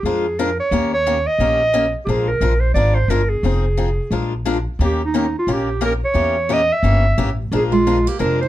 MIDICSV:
0, 0, Header, 1, 5, 480
1, 0, Start_track
1, 0, Tempo, 340136
1, 1009, Time_signature, 4, 2, 24, 8
1, 11971, End_track
2, 0, Start_track
2, 0, Title_t, "Clarinet"
2, 0, Program_c, 0, 71
2, 62, Note_on_c, 0, 68, 87
2, 553, Note_on_c, 0, 70, 84
2, 574, Note_off_c, 0, 68, 0
2, 829, Note_off_c, 0, 70, 0
2, 844, Note_on_c, 0, 73, 84
2, 1278, Note_off_c, 0, 73, 0
2, 1323, Note_on_c, 0, 73, 101
2, 1794, Note_on_c, 0, 75, 104
2, 1815, Note_off_c, 0, 73, 0
2, 2745, Note_off_c, 0, 75, 0
2, 2892, Note_on_c, 0, 67, 78
2, 2936, Note_on_c, 0, 68, 91
2, 2957, Note_off_c, 0, 67, 0
2, 3219, Note_on_c, 0, 70, 91
2, 3240, Note_off_c, 0, 68, 0
2, 3668, Note_on_c, 0, 72, 82
2, 3689, Note_off_c, 0, 70, 0
2, 3861, Note_off_c, 0, 72, 0
2, 3870, Note_on_c, 0, 74, 91
2, 4160, Note_on_c, 0, 72, 85
2, 4181, Note_off_c, 0, 74, 0
2, 4371, Note_on_c, 0, 70, 88
2, 4392, Note_off_c, 0, 72, 0
2, 4651, Note_on_c, 0, 68, 77
2, 4672, Note_off_c, 0, 70, 0
2, 6092, Note_off_c, 0, 68, 0
2, 6841, Note_on_c, 0, 67, 83
2, 7074, Note_off_c, 0, 67, 0
2, 7128, Note_on_c, 0, 63, 85
2, 7540, Note_off_c, 0, 63, 0
2, 7604, Note_on_c, 0, 65, 79
2, 7807, Note_on_c, 0, 67, 86
2, 7828, Note_off_c, 0, 65, 0
2, 8247, Note_off_c, 0, 67, 0
2, 8253, Note_on_c, 0, 70, 85
2, 8372, Note_off_c, 0, 70, 0
2, 8538, Note_on_c, 0, 73, 95
2, 9221, Note_on_c, 0, 75, 105
2, 9242, Note_off_c, 0, 73, 0
2, 9495, Note_on_c, 0, 76, 102
2, 9517, Note_off_c, 0, 75, 0
2, 10435, Note_off_c, 0, 76, 0
2, 10654, Note_on_c, 0, 68, 95
2, 10772, Note_off_c, 0, 68, 0
2, 10896, Note_on_c, 0, 65, 88
2, 11412, Note_on_c, 0, 67, 80
2, 11433, Note_off_c, 0, 65, 0
2, 11565, Note_off_c, 0, 67, 0
2, 11574, Note_on_c, 0, 70, 84
2, 11838, Note_off_c, 0, 70, 0
2, 11869, Note_on_c, 0, 72, 87
2, 11971, Note_off_c, 0, 72, 0
2, 11971, End_track
3, 0, Start_track
3, 0, Title_t, "Steel-string acoustic guitar"
3, 0, Program_c, 1, 25
3, 10624, Note_on_c, 1, 62, 64
3, 10700, Note_off_c, 1, 62, 0
3, 10895, Note_on_c, 1, 56, 81
3, 11388, Note_off_c, 1, 56, 0
3, 11388, Note_on_c, 1, 58, 72
3, 11574, Note_off_c, 1, 58, 0
3, 11593, Note_on_c, 1, 62, 76
3, 11848, Note_off_c, 1, 62, 0
3, 11890, Note_on_c, 1, 63, 67
3, 11971, Note_off_c, 1, 63, 0
3, 11971, End_track
4, 0, Start_track
4, 0, Title_t, "Steel-string acoustic guitar"
4, 0, Program_c, 2, 25
4, 77, Note_on_c, 2, 56, 70
4, 77, Note_on_c, 2, 62, 63
4, 78, Note_on_c, 2, 53, 78
4, 85, Note_on_c, 2, 65, 73
4, 90, Note_on_c, 2, 70, 73
4, 351, Note_off_c, 2, 62, 0
4, 352, Note_off_c, 2, 53, 0
4, 352, Note_off_c, 2, 56, 0
4, 355, Note_off_c, 2, 65, 0
4, 358, Note_off_c, 2, 70, 0
4, 550, Note_on_c, 2, 53, 94
4, 551, Note_on_c, 2, 56, 85
4, 556, Note_on_c, 2, 62, 90
4, 557, Note_on_c, 2, 70, 99
4, 560, Note_on_c, 2, 65, 89
4, 692, Note_off_c, 2, 53, 0
4, 693, Note_off_c, 2, 56, 0
4, 695, Note_off_c, 2, 62, 0
4, 696, Note_off_c, 2, 70, 0
4, 698, Note_off_c, 2, 65, 0
4, 1016, Note_on_c, 2, 58, 77
4, 1017, Note_on_c, 2, 51, 65
4, 1026, Note_on_c, 2, 70, 78
4, 1031, Note_on_c, 2, 67, 71
4, 1033, Note_on_c, 2, 61, 72
4, 1300, Note_off_c, 2, 58, 0
4, 1301, Note_off_c, 2, 51, 0
4, 1306, Note_off_c, 2, 70, 0
4, 1308, Note_off_c, 2, 67, 0
4, 1309, Note_off_c, 2, 61, 0
4, 1503, Note_on_c, 2, 51, 77
4, 1503, Note_on_c, 2, 67, 84
4, 1505, Note_on_c, 2, 58, 92
4, 1510, Note_on_c, 2, 61, 85
4, 1515, Note_on_c, 2, 70, 85
4, 1648, Note_off_c, 2, 67, 0
4, 1649, Note_off_c, 2, 51, 0
4, 1650, Note_off_c, 2, 58, 0
4, 1652, Note_off_c, 2, 61, 0
4, 1654, Note_off_c, 2, 70, 0
4, 1973, Note_on_c, 2, 58, 64
4, 1979, Note_on_c, 2, 51, 71
4, 1987, Note_on_c, 2, 67, 74
4, 1988, Note_on_c, 2, 61, 79
4, 1996, Note_on_c, 2, 70, 69
4, 2259, Note_off_c, 2, 58, 0
4, 2261, Note_off_c, 2, 51, 0
4, 2266, Note_off_c, 2, 61, 0
4, 2266, Note_off_c, 2, 67, 0
4, 2270, Note_off_c, 2, 70, 0
4, 2447, Note_on_c, 2, 51, 78
4, 2450, Note_on_c, 2, 61, 86
4, 2452, Note_on_c, 2, 58, 84
4, 2455, Note_on_c, 2, 67, 86
4, 2464, Note_on_c, 2, 70, 94
4, 2600, Note_off_c, 2, 51, 0
4, 2602, Note_off_c, 2, 61, 0
4, 2603, Note_off_c, 2, 58, 0
4, 2605, Note_off_c, 2, 67, 0
4, 2609, Note_off_c, 2, 70, 0
4, 2942, Note_on_c, 2, 56, 66
4, 2945, Note_on_c, 2, 53, 69
4, 2951, Note_on_c, 2, 62, 67
4, 2954, Note_on_c, 2, 65, 74
4, 2956, Note_on_c, 2, 70, 69
4, 3223, Note_off_c, 2, 56, 0
4, 3224, Note_off_c, 2, 53, 0
4, 3228, Note_off_c, 2, 62, 0
4, 3229, Note_off_c, 2, 65, 0
4, 3230, Note_off_c, 2, 70, 0
4, 3404, Note_on_c, 2, 53, 78
4, 3407, Note_on_c, 2, 56, 84
4, 3416, Note_on_c, 2, 62, 80
4, 3417, Note_on_c, 2, 65, 94
4, 3421, Note_on_c, 2, 70, 83
4, 3558, Note_off_c, 2, 53, 0
4, 3560, Note_off_c, 2, 56, 0
4, 3565, Note_off_c, 2, 62, 0
4, 3565, Note_off_c, 2, 65, 0
4, 3567, Note_off_c, 2, 70, 0
4, 3886, Note_on_c, 2, 53, 72
4, 3897, Note_on_c, 2, 62, 74
4, 3899, Note_on_c, 2, 56, 69
4, 3904, Note_on_c, 2, 65, 71
4, 3908, Note_on_c, 2, 70, 82
4, 4175, Note_off_c, 2, 53, 0
4, 4180, Note_off_c, 2, 62, 0
4, 4182, Note_off_c, 2, 56, 0
4, 4184, Note_off_c, 2, 65, 0
4, 4186, Note_off_c, 2, 70, 0
4, 4375, Note_on_c, 2, 53, 87
4, 4377, Note_on_c, 2, 56, 99
4, 4383, Note_on_c, 2, 62, 90
4, 4387, Note_on_c, 2, 70, 96
4, 4392, Note_on_c, 2, 65, 99
4, 4524, Note_off_c, 2, 53, 0
4, 4525, Note_off_c, 2, 56, 0
4, 4528, Note_off_c, 2, 62, 0
4, 4530, Note_off_c, 2, 70, 0
4, 4532, Note_off_c, 2, 65, 0
4, 4851, Note_on_c, 2, 53, 62
4, 4857, Note_on_c, 2, 63, 66
4, 4864, Note_on_c, 2, 60, 70
4, 4871, Note_on_c, 2, 68, 77
4, 5137, Note_off_c, 2, 53, 0
4, 5140, Note_off_c, 2, 63, 0
4, 5144, Note_off_c, 2, 60, 0
4, 5147, Note_off_c, 2, 68, 0
4, 5326, Note_on_c, 2, 53, 88
4, 5329, Note_on_c, 2, 60, 82
4, 5341, Note_on_c, 2, 68, 81
4, 5342, Note_on_c, 2, 63, 77
4, 5479, Note_off_c, 2, 53, 0
4, 5481, Note_off_c, 2, 60, 0
4, 5487, Note_off_c, 2, 63, 0
4, 5487, Note_off_c, 2, 68, 0
4, 5807, Note_on_c, 2, 56, 65
4, 5814, Note_on_c, 2, 53, 64
4, 5820, Note_on_c, 2, 62, 65
4, 5820, Note_on_c, 2, 70, 65
4, 5822, Note_on_c, 2, 65, 67
4, 6095, Note_off_c, 2, 56, 0
4, 6098, Note_off_c, 2, 53, 0
4, 6101, Note_off_c, 2, 70, 0
4, 6102, Note_off_c, 2, 62, 0
4, 6103, Note_off_c, 2, 65, 0
4, 6285, Note_on_c, 2, 56, 90
4, 6288, Note_on_c, 2, 53, 92
4, 6295, Note_on_c, 2, 62, 82
4, 6301, Note_on_c, 2, 65, 88
4, 6302, Note_on_c, 2, 70, 88
4, 6439, Note_off_c, 2, 56, 0
4, 6440, Note_off_c, 2, 53, 0
4, 6444, Note_off_c, 2, 62, 0
4, 6447, Note_off_c, 2, 65, 0
4, 6447, Note_off_c, 2, 70, 0
4, 6782, Note_on_c, 2, 51, 68
4, 6783, Note_on_c, 2, 61, 68
4, 6784, Note_on_c, 2, 58, 68
4, 6792, Note_on_c, 2, 70, 65
4, 6794, Note_on_c, 2, 67, 78
4, 7062, Note_off_c, 2, 51, 0
4, 7063, Note_off_c, 2, 58, 0
4, 7063, Note_off_c, 2, 61, 0
4, 7068, Note_off_c, 2, 67, 0
4, 7068, Note_off_c, 2, 70, 0
4, 7252, Note_on_c, 2, 51, 83
4, 7257, Note_on_c, 2, 61, 81
4, 7260, Note_on_c, 2, 58, 77
4, 7262, Note_on_c, 2, 67, 84
4, 7274, Note_on_c, 2, 70, 92
4, 7402, Note_off_c, 2, 51, 0
4, 7405, Note_off_c, 2, 61, 0
4, 7406, Note_off_c, 2, 58, 0
4, 7407, Note_off_c, 2, 67, 0
4, 7413, Note_off_c, 2, 70, 0
4, 7730, Note_on_c, 2, 51, 65
4, 7732, Note_on_c, 2, 61, 78
4, 7735, Note_on_c, 2, 67, 67
4, 7739, Note_on_c, 2, 58, 74
4, 7746, Note_on_c, 2, 70, 72
4, 8016, Note_off_c, 2, 51, 0
4, 8017, Note_off_c, 2, 61, 0
4, 8019, Note_off_c, 2, 67, 0
4, 8021, Note_off_c, 2, 58, 0
4, 8024, Note_off_c, 2, 70, 0
4, 8196, Note_on_c, 2, 51, 87
4, 8198, Note_on_c, 2, 58, 90
4, 8202, Note_on_c, 2, 61, 90
4, 8205, Note_on_c, 2, 67, 81
4, 8210, Note_on_c, 2, 70, 102
4, 8354, Note_off_c, 2, 51, 0
4, 8355, Note_off_c, 2, 58, 0
4, 8357, Note_off_c, 2, 61, 0
4, 8358, Note_off_c, 2, 67, 0
4, 8361, Note_off_c, 2, 70, 0
4, 8661, Note_on_c, 2, 52, 62
4, 8671, Note_on_c, 2, 58, 68
4, 8676, Note_on_c, 2, 61, 73
4, 8681, Note_on_c, 2, 67, 73
4, 8962, Note_off_c, 2, 52, 0
4, 8967, Note_off_c, 2, 58, 0
4, 8970, Note_off_c, 2, 61, 0
4, 8972, Note_off_c, 2, 67, 0
4, 9159, Note_on_c, 2, 52, 70
4, 9159, Note_on_c, 2, 58, 87
4, 9172, Note_on_c, 2, 67, 94
4, 9175, Note_on_c, 2, 61, 84
4, 9315, Note_off_c, 2, 58, 0
4, 9316, Note_off_c, 2, 52, 0
4, 9322, Note_off_c, 2, 67, 0
4, 9323, Note_off_c, 2, 61, 0
4, 9647, Note_on_c, 2, 52, 71
4, 9652, Note_on_c, 2, 61, 74
4, 9657, Note_on_c, 2, 58, 71
4, 9666, Note_on_c, 2, 67, 66
4, 9935, Note_off_c, 2, 52, 0
4, 9937, Note_off_c, 2, 61, 0
4, 9940, Note_off_c, 2, 58, 0
4, 9944, Note_off_c, 2, 67, 0
4, 10129, Note_on_c, 2, 61, 89
4, 10130, Note_on_c, 2, 52, 79
4, 10132, Note_on_c, 2, 58, 86
4, 10142, Note_on_c, 2, 67, 94
4, 10280, Note_off_c, 2, 61, 0
4, 10281, Note_off_c, 2, 52, 0
4, 10282, Note_off_c, 2, 58, 0
4, 10287, Note_off_c, 2, 67, 0
4, 10616, Note_on_c, 2, 62, 75
4, 10617, Note_on_c, 2, 53, 67
4, 10620, Note_on_c, 2, 56, 66
4, 10622, Note_on_c, 2, 65, 77
4, 10627, Note_on_c, 2, 70, 82
4, 10899, Note_off_c, 2, 62, 0
4, 10900, Note_off_c, 2, 53, 0
4, 10901, Note_off_c, 2, 56, 0
4, 10902, Note_off_c, 2, 65, 0
4, 10905, Note_off_c, 2, 70, 0
4, 11100, Note_on_c, 2, 53, 74
4, 11102, Note_on_c, 2, 56, 74
4, 11105, Note_on_c, 2, 62, 89
4, 11106, Note_on_c, 2, 70, 95
4, 11112, Note_on_c, 2, 65, 99
4, 11246, Note_off_c, 2, 53, 0
4, 11247, Note_off_c, 2, 56, 0
4, 11249, Note_off_c, 2, 62, 0
4, 11249, Note_off_c, 2, 70, 0
4, 11252, Note_off_c, 2, 65, 0
4, 11559, Note_on_c, 2, 56, 68
4, 11561, Note_on_c, 2, 53, 62
4, 11565, Note_on_c, 2, 62, 70
4, 11571, Note_on_c, 2, 70, 79
4, 11572, Note_on_c, 2, 65, 72
4, 11851, Note_off_c, 2, 56, 0
4, 11852, Note_off_c, 2, 53, 0
4, 11854, Note_off_c, 2, 62, 0
4, 11857, Note_off_c, 2, 65, 0
4, 11857, Note_off_c, 2, 70, 0
4, 11971, End_track
5, 0, Start_track
5, 0, Title_t, "Upright bass"
5, 0, Program_c, 3, 32
5, 44, Note_on_c, 3, 41, 71
5, 814, Note_off_c, 3, 41, 0
5, 1006, Note_on_c, 3, 39, 89
5, 1775, Note_off_c, 3, 39, 0
5, 1954, Note_on_c, 3, 34, 77
5, 2727, Note_off_c, 3, 34, 0
5, 2916, Note_on_c, 3, 34, 90
5, 3305, Note_off_c, 3, 34, 0
5, 3395, Note_on_c, 3, 34, 87
5, 3809, Note_off_c, 3, 34, 0
5, 3869, Note_on_c, 3, 32, 77
5, 4285, Note_off_c, 3, 32, 0
5, 4349, Note_on_c, 3, 31, 78
5, 4765, Note_off_c, 3, 31, 0
5, 4841, Note_on_c, 3, 29, 80
5, 5611, Note_off_c, 3, 29, 0
5, 5794, Note_on_c, 3, 34, 77
5, 6567, Note_off_c, 3, 34, 0
5, 6759, Note_on_c, 3, 39, 80
5, 7530, Note_off_c, 3, 39, 0
5, 7718, Note_on_c, 3, 34, 75
5, 8489, Note_off_c, 3, 34, 0
5, 8671, Note_on_c, 3, 40, 79
5, 9445, Note_off_c, 3, 40, 0
5, 9633, Note_on_c, 3, 31, 82
5, 10047, Note_off_c, 3, 31, 0
5, 10128, Note_on_c, 3, 33, 86
5, 10535, Note_off_c, 3, 33, 0
5, 10606, Note_on_c, 3, 34, 86
5, 11374, Note_off_c, 3, 34, 0
5, 11571, Note_on_c, 3, 29, 80
5, 11971, Note_off_c, 3, 29, 0
5, 11971, End_track
0, 0, End_of_file